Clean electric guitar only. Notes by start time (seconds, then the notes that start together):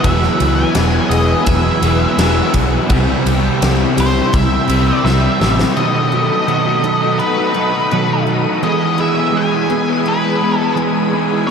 0.03 E3 F#3 B3 E4 G#4
1.11 B3 E4 G#4
1.46 E3 F#3 B3 E4 G#4
2.18 F#3 B3 E4 G#4
2.53 B3 E4 G#4
2.88 C3 G3 E4
3.97 G3 E4
4.32 C3 G3 E4
5.04 C3 G3 E4
5.41 G3 B3 E4
5.77 B2 D#3 F#3 B3 D#4 A4
5.95 muted clean electric guitar stroke
6.30 F#3 B3 D#4 A4
6.47 B2 D#3 F#3 B3 D#4 A4
6.83 F#3 B3 D#4 A4
7.38 F#3 B3 D#4 A4
7.56 F#3 B3 D#4 A4
7.75 muted clean electric guitar stroke
7.92 B2 D#3 F#3 B3 D#4 A4
8.10 F#3 B3 D#4 A4
8.27 F#3 B3 D#4 A4
8.62 E3 G#3 B3 G#4
8.81 muted clean electric guitar stroke
9.14 B3 G#4
9.32 E3 G#3 B3 G#4
9.68 G#3 B3 G#4
10.23 B3 G#4
10.41 G#3 B3 G#4
10.58 muted clean electric guitar stroke
10.75 E3 G#3 B3 G#4
10.94 B3 G#4
11.13 G#3 B3 D#4 G#4